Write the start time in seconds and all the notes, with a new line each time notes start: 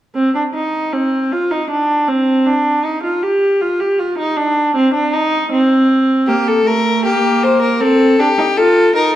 0.15 C4
0.35 D4
0.54 D#4
0.93 C4
1.32 F4
1.51 D#4
1.70 D4
2.08 C4
2.46 D4
2.84 D#4
3.03 F4
3.23 G4
3.61 F4
3.80 G4
3.99 F4
4.18 D#4
4.37 D4
4.76 C4
4.94 D4
5.13 D#4
5.52 C4
6.27 A#3 G4
6.48 A4
6.66 A3 A#4
7.04 A#3 G4
7.43 C5
7.62 A#4
7.80 C4 A4
8.19 D4 G4
8.38 D#4
8.57 F4 A4
8.95 D#4 A#4